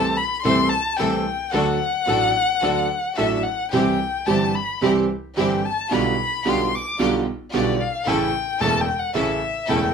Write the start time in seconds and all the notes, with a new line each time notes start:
Already playing: C2 C3 E3 A3 C4 E4 A4 A5
0.17 B5
0.42 C2 C3 E3 A3 C4 E4 A4 C6
0.69 A5
0.97 C2 C3 E3 A3 C4 E4 A4 G5
1.51 D2 D3 F#3 A3 D4 F#4 A4 F#5
2.06 A1 A2 F#3 A3 D4 F#4 A4
2.61 D2 D3 F#3 A3 D4 F#4 A4
3.16 A1 A2 F#3 A3 D4 F#4 A4 E5
3.43 F#5
3.72 C2 C3 E3 G3 C4 E4 G4 G5
4.27 G1 G2 E3 G3 C4 E4 G4 A5
4.55 B5
4.81 C2 C3 E3 G3 C4 E4 G4
5.36 G1 G2 E3 G3 C4 E4 G4 G5
5.65 A5
5.91 B1 B2 D3 G3 B3 F4 G4 B5
6.45 B1 B2 D3 G3 B3 F4 G4 C6
6.75 D6
6.99 B1 B2 D3 G3 B3 F4 G4
7.53 B1 B2 D3 G3 B3 F4 G4 D5
7.81 F5
8.06 A1 A2 C#3 E3 A3 C#4 E4 A4 G5
8.61 E1 E2 C#3 E3 A3 C#4 E4 A4 A5
8.81 G5
8.99 F#5
9.15 A1 A2 C#3 E3 A3 C#4 E4 A4 E5
9.68 E1 E2 C#3 E3 A3 C#4 E4 A4 G5